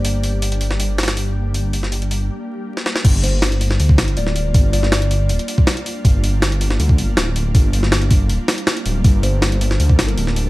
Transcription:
<<
  \new Staff \with { instrumentName = "Kalimba" } { \time 4/4 \key g \minor \tempo 4 = 160 r1 | r1 | r8 c''8 r2 d''8 r8 | r8 d''4 r2 r8 |
r1 | r1 | r8 c''8 r4. r16 bes'8 r8. | }
  \new Staff \with { instrumentName = "Ambient pad" } { \time 4/4 \key g \minor << { g'1~ | g'1 | f'1~ | f'1~ |
f'1~ | f'1 | a'1 | } \\ { <g bes d'>1~ | <g bes d'>1 | <g bes d'>1~ | <g bes d'>1~ |
<g bes d'>1~ | <g bes d'>1~ | <g bes d'>1 | } >> }
  \new Staff \with { instrumentName = "Detuned saw bass" } { \clef bass \time 4/4 \key g \minor g,,1~ | g,,2 r2 | g,,2 d,8 g,,8 d,,4 | g,,2 d,,8 r4. |
g,,2 d,8 g,,8 d,,4 | g,,2 d,,8 r4 d,,8 | g,,2 d,8 g,,8 d,,4 | }
  \new DrumStaff \with { instrumentName = "Drums" } \drummode { \time 4/4 hho8 hho8 hho16 hh16 hho16 sn16 hho8 <hho sn>32 <hho sn>32 <hho sn>16 hho4 | hho8 hho16 sn16 hho16 hh16 hho8 r4 r16 sn16 sn16 sn16 | <cymc hho bd>8 hho8 <hho sn>16 hh16 hho16 sn16 hho16 bd16 <hho sn>16 hh16 hho16 sn16 hho8 | <hho bd>8 hho16 sn16 <hho sn>16 hh16 hho8 hho16 hh16 hho16 bd16 <hho sn>16 hh16 hho8 |
<hho bd>8 hho8 <hho sn>16 hh16 hho16 sn16 hho16 bd16 hho8 <hho sn>8 hho8 | <hho bd>8 hho16 sn16 <hho sn>16 hh16 <hho bd>8 hho8 <hho sn>16 hh16 <hho sn>16 hh16 hho8 | <hho bd>8 hho8 <hho sn>16 hh16 hho16 sn16 hho16 bd16 <hho sn>16 hh16 hho16 sn16 hho8 | }
>>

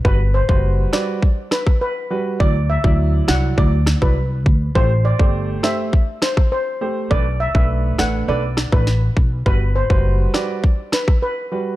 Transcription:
<<
  \new Staff \with { instrumentName = "Steel pan" } { \time 4/4 \key g \major \tempo 4 = 102 b'16 r16 c''16 c''16 r8 d''16 r8. b'16 r16 b'8. r16 | d''16 r16 e''16 e''16 r8 fis''16 r16 d''16 r8 b'16 r4 | c''16 r16 d''16 d''16 r8 e''16 r8. c''16 r16 c''8. r16 | d''16 r16 e''16 e''16 r8 fis''16 r16 d''16 r8 b'16 r4 |
b'16 r16 c''16 c''16 r8 d''16 r8. b'16 r16 b'8. r16 | }
  \new Staff \with { instrumentName = "Grand piano" } { \time 4/4 \key g \major <g fis' b'>16 r8 <g fis' b'>8. <g fis' b'>8 r4. <g fis' b'>8 | <fis e' d''>16 r8 <fis e' d''>8. <fis e' d''>8 <fis e' d''>16 r8 <fis e' d''>16 r4 | <a g' c''>16 r8 <a g' c''>8. <a g' c''>8 r4. <a g' c''>8 | <a d' b'>16 r8 <a d' b'>8. <a d' b'>8 <a d' b'>16 r8 <a d' b'>16 r4 |
<g fis' b'>16 r8 <g fis' b'>8. <g fis' b'>8 r4. <g fis' b'>8 | }
  \new Staff \with { instrumentName = "Upright bass" } { \clef bass \time 4/4 \key g \major g,,8. fis,,8. r2 r8 | d,8. d,8. c,8 d,8. c,8. d,8 | a,,8. g,,8. r2 r8 | b,,8. b,,8. a,,8 b,,8. a,,8. b,,8 |
g,,8. fis,,8. r2 r8 | }
  \new DrumStaff \with { instrumentName = "Drums" } \drummode { \time 4/4 bd8. bd16 r8 <ss sn>8 bd8 <ss sn>16 <bd ss>16 r4 | bd8. bd16 r8 <ss sn>8 bd8 <ss sn>16 <bd ss>16 r8 bd8 | bd8. bd16 r8 <ss sn>8 bd8 <ss sn>16 <bd ss>16 r4 | bd8. bd16 r8 <ss sn>8 r8 <ss sn>16 <bd ss>16 sn8 bd8 |
bd8. bd16 r8 <ss sn>8 bd8 <ss sn>16 <bd ss>16 r4 | }
>>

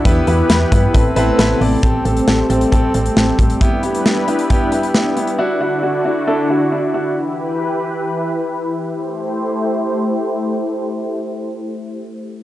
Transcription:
<<
  \new Staff \with { instrumentName = "Grand piano" } { \time 4/4 \key a \dorian \tempo 4 = 135 <b e' g' b'>8 <b e' g' b'>8 <b e' g' b'>8 <b e' g' b'>8 <c' e' a' b'>8 <c' e' a' b'>8 <c' e' a' b'>8 <c' e' a' d''>8 | <c' g' a'>8 <c' g' a'>8 <c' g' a'>8 <c' g' a'>8 <c' g' a'>8 <c' g' a'>8 <c' g' a'>8 <c' g' a'>8 | <b e' g'>8 <b e' g'>8 <b e' g'>8 <b e' g'>8 <b e' g'>8 <b e' g'>8 <b e' g'>8 <b e' g'>8 | <d' e' fis'>8 <d' e' fis'>8 <d' e' fis'>8 <d' e' fis'>8 <d' e' a'>8 <d' e' fis'>8 <d' e' fis'>8 <d' e' fis'>8 |
r1 | r1 | r1 | }
  \new Staff \with { instrumentName = "Analog synth pad" } { \time 4/4 \key a \dorian << { <e b'>2 <c b>2 | <g c'>1 | <d' b'>1 | <d d' fis'>1 |
<e b'>1 | <a e' g' c''>1~ | <a e' g' c''>1 | } \\ { <e' g'>2 a2 | a1 | e'1~ | e'1 |
g'1 | r1 | r1 | } >> }
  \new Staff \with { instrumentName = "FM bass" } { \clef bass \time 4/4 \key a \dorian e,8 e,8 e,8 g,8 a,,8 a,,8 a,,8 a,,8 | a,,8 a,,8 a,,8 a,,8 a,,8 a,,8 a,,8 a,,8 | r1 | r1 |
r1 | r1 | r1 | }
  \new DrumStaff \with { instrumentName = "Drums" } \drummode { \time 4/4 <hh bd>8 hh8 <hh sn>8 <hh bd>8 <hh bd>8 hh8 <hh sn>8 hho8 | <hh bd>8 hh16 hh16 sn8 hh16 hh16 <hh bd>8 hh16 hh16 sn8 <hh bd>16 hh16 | <hh bd>8 hh16 hh16 sn8 hh16 hh16 <hh bd>8 hh16 hh16 sn8 hh16 hh16 | r4 r4 r4 r4 |
r4 r4 r4 r4 | r4 r4 r4 r4 | r4 r4 r4 r4 | }
>>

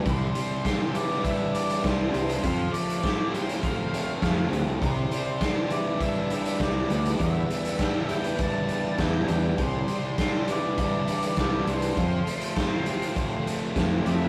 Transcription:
<<
  \new Staff \with { instrumentName = "Lead electric guitar" } { \time 4/4 \key c \major \tempo 4 = 101 c''4. d''8 e''8 d''8 c''8 c''8~ | c''8 d''4 c''8 f''4. r8 | c''4. d''8 e''8 e''8 d''4 | e''4. g''8 a''4 g''4 |
c''4. d''8 d''4 d''8 c''8~ | c''2. r8 e''8 | }
  \new Staff \with { instrumentName = "Clean electric guitar" } { \time 4/4 \key c \major e8 c'8 g'8 d'8 c'8 e8 c'8 d'8 | f8 a8 g'8 c'8 a8 f8 a8 c'8 | e8 c'8 g'8 d'8 c'8 e8 c'8 d'8 | b8 b8 g'8 d'8 b8 b8 b8 d'8 |
e8 c'8 g'8 d'8 c'8 e8 c'8 d'8 | f8 a8 g'8 c'8 a8 f8 a8 c'8 | }
  \new Staff \with { instrumentName = "Distorted electric guitar" } { \time 4/4 \key c \major c4 d'8 e'8 g8 d'8 g8 d'8 | f4 c'8 g'8 a8 c'8 a8 c'8 | c4 d'8 e'8 g8 d'8 g8 d'8 | e,4 d'8 e'8 g8 d'8 g8 d'8 |
c4 d'8 e'8 g8 d'8 g8 d'8 | f4 c'8 g'8 a8 c'8 a8 c'8 | }
  \new Staff \with { instrumentName = "Overdriven electric guitar" } { \clef bass \time 4/4 \key c \major c8 g8 d'8 e8 d'8 g8 d'8 e8 | f8 a8 c'8 f8 c'8 a8 c'8 f8 | c8 g8 d'8 e8 d'8 g8 d'8 e8 | e,8 g8 d'8 e8 d'8 g8 d'8 e8 |
c8 g8 d'8 e8 d'8 g8 d'8 e8 | f8 a8 c'8 f8 c'8 a8 c'8 f8 | }
  \new Staff \with { instrumentName = "Fingered electric bass" } { \clef bass \time 4/4 \key c \major c,8 r2 r8 c,8 c,8 | f,8 r2 r8 f,8 d,16 c,16 | c,8 r2 r8 c,8 d,8 | e,8 r2 r8 e,8 e,8 |
c,8 r2 r8 c,8 c,8 | f,8 r2 r8 f,8 f,8 | }
  \new DrumStaff \with { instrumentName = "Drums" } \drummode { \time 4/4 <hh bd>8 hh8 <hh bd sn>8 hh16 sn16 <hh bd>8 hh16 hh16 <hh bd sn>8 hh16 hh16 | <hh bd>8 hh16 hh16 <hh bd sn>8 hh16 <hh sn>16 <hh bd>8 hh8 <hh bd sn>8 hh8 | <hh bd>8 hh8 <hh bd sn>8 hh8 <hh bd>8 hh16 hh16 <hh bd sn>8 hh16 hh16 | <hh bd>8 hh16 hh16 <hh bd sn>8 hh16 hh16 <hh bd>8 hh8 <hh bd sn>8 hh8 |
<hh bd>8 hh8 <hh bd sn>8 hh8 <hh bd>8 hh16 hh16 <hh bd sn>8 hh16 hh16 | <hh bd>8 hh16 hh16 <hh bd sn>8 hh16 hh16 <hh bd>8 hh8 <hh bd sn>8 hh8 | }
>>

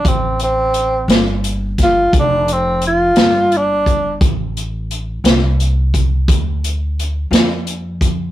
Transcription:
<<
  \new Staff \with { instrumentName = "Tenor saxophone" } { \time 12/8 \key d \minor \tempo 4. = 58 c'8 c'4 r4 f'8 d'8 c'8 f'4 d'4 | r1. | }
  \new Staff \with { instrumentName = "Clean electric guitar" } { \time 12/8 \key d \minor r4. <d a c' f'>8 r2 r8 <d a c' f'>8 r4 | r4. <d a c' f'>8 r2 r8 <d a c' f'>8 r4 | }
  \new Staff \with { instrumentName = "Upright bass" } { \clef bass \time 12/8 \key d \minor a,,4. g,,4. f,,4. g,,4. | a,,4. c,4. d,4. f,4. | }
  \new DrumStaff \with { instrumentName = "Drums" } \drummode { \time 12/8 <hh bd>8 hh8 hh8 <hh sn>8 hh8 <hh bd sn>8 <hh bd>8 hh8 hh8 <hh sn>8 hh8 <hh bd>8 | <hh bd>8 hh8 hh8 <hh sn>8 hh8 <hh bd>8 <hh bd>8 hh8 hh8 <hh sn>8 hh8 <hh bd>8 | }
>>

